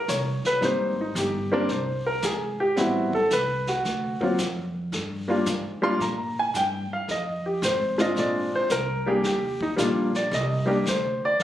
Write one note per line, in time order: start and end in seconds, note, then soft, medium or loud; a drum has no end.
0.08 0.42 C2 medium
0.08 0.44 C#5 medium
0.08 kick soft
0.08 snare medium
0.08 hi-hat pedal medium
0.44 0.62 B4 medium
0.44 muted upright bass stroke soft
0.44 snare soft
0.61 1.14 G#1 medium
0.61 0.94 G3 medium
0.61 0.95 A#3 soft
0.61 0.95 C4 soft
0.61 0.95 D#4 medium
0.61 brush sweep soft
0.61 kick soft
0.61 snare soft
0.65 0.99 C5 medium
1.01 1.17 D#4 medium
1.15 1.68 G1 medium
1.15 1.52 G4 medium
1.15 kick soft
1.15 snare medium
1.15 hi-hat pedal soft
1.52 1.68 G3 medium
1.52 1.68 A#3 medium
1.52 1.68 C4 medium
1.52 1.69 D4 loud
1.52 1.69 A#4 medium
1.69 2.22 C2 medium
1.69 2.06 C5 medium
1.69 brush sweep soft
1.69 kick soft
1.69 snare soft
2.07 2.23 A#4 medium
2.22 2.76 G#1 medium
2.22 2.60 G#4 medium
2.22 kick soft
2.22 snare medium
2.22 hi-hat pedal medium
2.60 2.77 G4 medium
2.76 3.29 A1 medium
2.76 3.10 G3 medium
2.76 3.10 B3 medium
2.76 3.10 C4 medium
2.76 3.11 E4 medium
2.76 3.14 F#4 medium
2.76 brush sweep medium
2.76 kick soft
2.76 snare soft
3.13 3.31 A4 medium
3.13 kick medium
3.31 3.83 C2 medium
3.31 3.68 B4 medium
3.31 kick soft
3.31 snare medium
3.31 hi-hat pedal soft
3.67 4.35 F#4 medium
3.67 snare soft
3.85 4.37 D2 medium
3.85 brush sweep soft
3.85 kick soft
3.85 snare soft
4.21 4.37 F#3 medium
4.21 4.37 A#3 medium
4.21 4.38 C4 medium
4.21 4.38 F4 medium
4.21 kick soft
4.38 4.91 F2 medium
4.38 kick soft
4.38 snare medium
4.38 hi-hat pedal medium
4.92 5.45 G2 medium
4.92 brush sweep soft
4.92 kick soft
4.92 snare soft
5.28 5.44 G3 medium
5.28 5.45 A#3 medium
5.28 5.45 D4 medium
5.28 5.45 F4 medium
5.46 5.99 G#2 medium
5.46 kick soft
5.46 snare medium
5.46 hi-hat pedal medium
5.82 5.98 G3 medium
5.82 5.99 A#3 medium
5.82 5.99 D4 medium
5.82 5.99 F4 medium
5.82 6.00 C6 medium
6.00 6.53 A#2 medium
6.00 6.37 A#5 medium
6.00 brush sweep soft
6.00 kick soft
6.00 snare soft
6.39 6.55 G#5 loud
6.54 6.88 G2 medium
6.54 6.91 G5 medium
6.54 kick soft
6.54 snare medium
6.54 hi-hat pedal medium
6.91 7.09 F5 medium
6.91 muted upright bass stroke soft
7.08 7.61 F2 medium
7.08 7.45 D#5 medium
7.08 brush sweep soft
7.08 kick soft
7.08 snare soft
7.46 7.62 G4 medium
7.62 8.14 G#1 loud
7.62 7.99 C5 medium
7.62 kick soft
7.62 snare medium
7.62 hi-hat pedal medium
7.98 8.66 G#3 medium
7.98 8.67 C4 medium
7.98 8.67 D4 medium
7.98 8.67 F4 medium
7.98 8.17 D#5 medium
7.98 snare soft
8.16 8.50 A#1 medium
8.16 8.53 D5 medium
8.16 brush sweep soft
8.16 kick soft
8.16 snare soft
8.53 8.71 C5 medium
8.53 muted upright bass stroke soft
8.70 9.22 C2 medium
8.70 9.06 A#4 medium
8.70 kick soft
8.70 snare medium
8.70 hi-hat pedal medium
9.06 9.22 G3 medium
9.06 9.22 A#3 medium
9.06 9.23 D4 medium
9.06 9.23 G4 medium
9.06 9.24 G#4 medium
9.23 9.76 D#2 medium
9.23 9.61 G4 medium
9.23 brush sweep medium
9.23 kick soft
9.23 snare soft
9.61 9.72 D#4 medium
9.61 kick medium
9.76 10.30 A#1 medium
9.76 10.10 G3 medium
9.76 10.10 A#3 medium
9.76 10.11 D4 medium
9.76 10.11 F4 medium
9.76 kick soft
9.76 snare medium
9.76 hi-hat pedal soft
10.15 10.32 D5 medium
10.15 snare soft
10.31 10.84 C2 medium
10.31 10.83 D#5 medium
10.31 brush sweep soft
10.31 kick soft
10.31 snare soft
10.66 10.83 G3 medium
10.66 10.83 A#3 medium
10.66 10.83 D4 medium
10.66 10.84 G4 medium
10.85 11.38 D2 medium
10.85 11.23 C5 medium
10.85 kick soft
10.85 snare medium
10.85 hi-hat pedal medium
11.25 11.41 D5 medium
11.40 11.43 D#2 medium
11.40 brush sweep soft
11.40 kick soft
11.40 snare soft